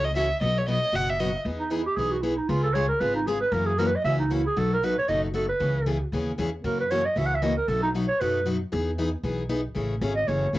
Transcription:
Already playing: C#2
0.05 D#5
0.15 C#3 E3 A3 C#4 F#4 E5
0.41 B1 B2 F#3 B3 D#4 F#4 D#5
0.58 C#5
0.68 B2 F#3 B3 D#4 F#4 D#5
0.92 F#1 B2 F#3 B3 D#4 F#4 F#5
1.10 E5
1.19 B2 F#3 B3 D#4 F#4 D#5
1.45 E2 E3 B3 D#4 G#4
1.59 D#4
1.70 E3 B3 D#4 E4 G#4
1.86 G4
1.97 B1 E3 B3 D#4 G#4
2.12 F#4
2.22 E3 B3 D#4 E4 G#4
2.37 D#4
2.49 C#2 C#3 G#3 B3 F4 G#4
2.63 A4
2.74 C#3 G#3 B3 F4 G#4 C#5
2.88 A#4
3.00 G#1 C#3 G#3 B3 F4 G#4 B4
3.15 D#4
3.27 C#3 G#3 B3 F4 G#4
3.41 B4
3.52 F#2 C#3 E3 A#3 C#4 F#4 A#4
3.66 G#4
3.78 C#3 E3 A#3 C#4 F#4 A#4
3.87 B4
3.96 D#5
4.04 C#2 C#3 E3 A#3 C#4 F#4 E5
4.19 D#4
4.30 C#3 E3 A#3 C#4 E4 F#4
4.47 G#4
4.56 B1 B2 F#3 A3 D#4 F#4 A4
4.74 A#4
4.83 B2 F#3 A3 D#4 F#4 B4
4.98 C#5
5.08 F#1 B2 F#3 A3 D#4 F#4 D#5
5.24 F#4
5.34 B2 F#3 A3 D#4 F#4 A4
5.49 B4
5.60 C#2 C#3 E3 B3 C#4 G#4
5.86 C#3 E3 B3 C#4 G#4
6.12 D#2 C#3 E3 B3 C#4 G#4
6.38 E2 C#3 E3 B3 C#4 G#4
6.64 F#2 C#3 E3 A#3 C#4 F#4 A#4
6.80 B4
6.91 C#3 E3 A#3 C#4 F#4 C#5
7.06 D#5
7.16 C#2 C#3 E3 A#3 C#4 F#4 E5
7.26 F#5
7.35 E5
7.42 C#3 E3 A#3 C#4 F#4 D#5
7.57 A#4
7.68 B1 B2 F#3 A3 D#4 F#4 A4
7.83 D#4
7.95 B2 F#3 A3 D#4 F#4
8.08 C#5
8.20 F#2 B2 F#3 A3 D#4 F#4 B4
8.46 B2 F#3 A3 D#4 F#4
8.72 E2 E3 B3 D#4 G#4
8.98 E3 B3 D#4 G#4
9.23 B1 E3 B3 D#4 G#4
9.49 E3 B3 D#4 G#4
9.75 A1 C#3 E3 A3 C#4 G#4
10.01 G#1 C#3 E3 A3 C#4 G#4
10.16 D#5
10.28 F#1 C#3 E3 A3 C#4 G#4 C#5
10.53 G#1 C#3 E3 A3 C#4 G#4

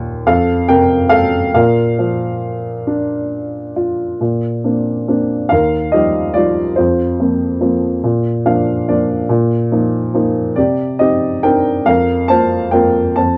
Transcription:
Already playing: D#2 A#2
0.26 F2 A4 F5
0.68 C3 A#4 G5
1.09 A4 F5
1.54 A#2 A#4 F5
1.99 F3
2.87 D4
3.76 F4
4.21 A#2
4.64 A#3 C4 D4
5.08 A#3 C4 D4
5.49 D#2 A#4 F5
5.92 F3 G3 D#4 G4 D#5
6.34 F3 G3 D#4 F4 D5
6.76 F2 F4 C5
7.20 F3 A#3 C4
7.61 F3 A#3 C4
8.04 A#2
8.46 F3 A#3 D4 F5
8.88 F3 A#3 D4 D5
9.29 A#2
9.72 F3 A#3 D#4
10.14 F3 A#3 D#4
10.56 C3 G4 D5
10.99 C4 D#4 G4 D#5
11.43 C4 D4 D#4 A#4 G5
11.86 F2 A#4 F5
12.28 A#3 C4 F4 C5 A5
12.71 A#3 C4 F4 A#4 G5
13.16 F2 C5 A5

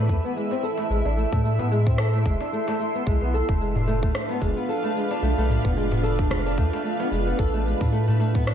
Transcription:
Already playing: A2 E4 B4 E5
0.09 E2 A3, kick, darbuka ka, shaker
0.25 B3, shaker
0.36 G#3, shaker
0.51 C4, darbuka ka, shaker
0.63 A4, darbuka tek, shaker
0.78 A3, darbuka tek, shaker
0.90 A1 G#3 C6, shaker
1.05 A1 D4, darbuka ka
1.17 A3, shaker
1.32 A2 A3, kick, shaker
1.44 A3, shaker
1.59 B3, darbuka tek, darbuka dum, shaker
1.71 G#3, darbuka ka, shaker
1.86 C4, kick, shaker
1.98 A4, cross-stick, shaker
2.13 A3, darbuka ka, shaker
2.25 E1 G#3, kick, shaker
2.40 D4, darbuka tek, shaker
2.53 A3, shaker
2.67 A3, darbuka ka, darbuka tek, shaker
2.80 A3, darbuka tek, shaker
2.95 B3, shaker
3.06 B1 G#3 D4 F4 B4 F5, kick, shaker
3.21 B1 B3, darbuka ka
3.34 A4, shaker
3.49 F1 A3, kick, shaker
3.61 G#3, shaker
3.75 D4, darbuka dum, shaker
3.87 A3, darbuka ka, shaker
4.02 A3, kick, shaker
4.15 A3, cross-stick, shaker
4.29 B3, darbuka ka, shaker
4.41 F1 G#3, kick, darbuka ka, shaker
4.57 B3, shaker
4.69 A4, shaker
4.83 A3, darbuka ka, shaker
4.95 G#3, darbuka tek, shaker
5.11 D4, darbuka tek, shaker
5.23 B1 A3, shaker
5.38 B1 A3, darbuka ka
5.49 A3, darbuka dum, shaker
5.65 F1 B3, kick, shaker
5.77 G#3, shaker
5.92 B3, darbuka tek, darbuka dum, shaker
6.03 A4, darbuka ka, shaker
6.19 A3, kick, shaker
6.31 G#3, kick, cross-stick, shaker
6.46 D4, darbuka ka, shaker
6.58 E2 A3, kick, shaker
6.73 A3, darbuka tek, shaker
6.85 A3, shaker
7.00 B3, darbuka ka, darbuka tek, shaker
7.11 F1 G#3, darbuka tek, shaker
7.27 B3, shaker
7.39 A1 E4 A4 E5, kick, shaker
7.53 A1 A3, darbuka ka
7.66 G#3, shaker
7.81 A2 D4, kick, shaker
7.92 A3, shaker
8.07 A3, darbuka dum, shaker
8.20 A3, darbuka ka, shaker
8.34 B3, kick, shaker
8.47 D4, cross-stick, shaker

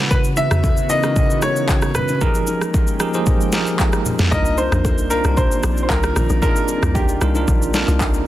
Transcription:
Already playing: C#3 E3 B3 C#4 E4 F#4 B4 F#5
0.11 B4, kick, low conga, shaker
0.24 shaker
0.37 E5, low bongo, shaker
0.51 cross-stick, mid tom, shaker
0.64 kick, high bongo, shaker
0.77 shaker
0.90 C#3 D#4 E4 F#4 A#4 D#5, shaker
1.03 C#3 D#4 E4 F#4 A#4, cross-stick, low bongo, shaker
1.16 kick, low conga, shaker
1.30 shaker
1.42 C#5, cross-stick, high bongo, low bongo, shaker
1.56 shaker
1.69 kick, clap, high bongo, shaker
1.82 cross-stick, shaker
1.95 B4, cross-stick, low conga, shaker
2.08 low bongo, shaker
2.21 F3 G#3 A#3 D#4 G4 G#4 A#4 G5, kick, low conga, shaker
2.35 shaker
2.47 low bongo, shaker
2.61 cross-stick, shaker
2.74 kick, high bongo, shaker
2.87 shaker
3.00 F3 D#4 G4 G#4 A#4, cross-stick, shaker
3.14 F3 D#4 G4 G#4 C5, low bongo, shaker
3.26 kick, low conga, shaker
3.41 shaker
3.52 F3 D#4 G4 G#4 A#4, snare, high bongo, low bongo, shaker
3.67 shaker
3.79 A#5, kick, clap, high bongo, shaker
3.92 cross-stick, shaker
4.06 low conga, shaker
4.19 snare, mid tom, low bongo, shaker
4.31 C2 D#3 C4 D4 D#4 F4 A#4 D5 D#5, kick, low conga, shaker
4.45 shaker
4.58 C5, low bongo, shaker
4.72 A#1, cross-stick, mid tom, shaker
4.85 kick, high bongo, shaker
4.98 C2, shaker
5.10 D4 D#4 F4 A#4 C5, shaker
5.24 C2 D4 D#4 F4 G4, cross-stick, low bongo, shaker
5.37 C5, kick, low conga, shaker
5.52 shaker
5.63 A#1, cross-stick, high bongo, low bongo, shaker
5.77 shaker
5.83 C5
5.89 C2 A#4, kick, clap, high bongo, shaker
6.03 cross-stick, shaker
6.16 A#1, cross-stick, low conga, shaker
6.29 A#1, low bongo, shaker
6.42 D4 D#4 F4 G#4 A#4, kick, low conga, shaker
6.50 A#4
6.56 shaker
6.68 low bongo, shaker
6.83 C2, cross-stick, mid tom, shaker
6.95 G4, kick, high bongo, shaker
7.09 shaker
7.21 C2 D4 D#4 F4 A#4, cross-stick, shaker
7.35 D4 D#4 F4 A#4, low bongo, shaker
7.48 A#1, kick, low conga, shaker
7.62 shaker
7.74 D4 D#4 F4 A#4, snare, high bongo, low bongo, shaker
7.88 C2, shaker
8.00 kick, clap, high bongo, shaker
8.14 shaker

